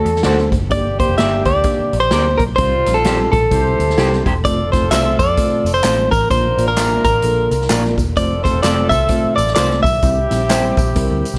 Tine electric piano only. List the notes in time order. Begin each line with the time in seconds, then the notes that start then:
0.25 A3 D4 F#4 C5
0.70 A#3 D4 G4 D5
0.99 A#3 D4 G4 D5
1.18 A#3 D4 G4 D5
1.66 A#3 D4 G4 D5
2.12 A#3 D4 G4 C5
2.58 G3 C4 F4 C5
2.87 G3 C4 F4 D5
3.04 G3 C4 F4 G4
3.52 G3 C4 E4 C5
3.98 G3 C4 E4 G4
4.43 A3 C4 F4 C5
4.73 A3 C4 F4 C5
4.91 A3 C4 F4 C5
5.38 A3 C4 F4 C5
5.84 A3 C4 F4 C5
6.30 A#3 D4 F4 D5
6.58 A#3 D4 F4 D5
6.76 A#3 D4 F4 E5
7.24 A#3 D4 F4 A4
7.71 A#3 D4 F4 D5
8.17 A3 C4 F4 C5
8.45 A3 C4 F4 C5
8.65 A3 C4 F4 C5
9.10 A3 C4 F4 C5
9.56 A3 C4 F4 C5
10.03 G3 C4 E4 C5
10.30 G3 C4 E4 C5
10.50 G3 C4 E4 C5
10.96 G3 C4 E4 A#4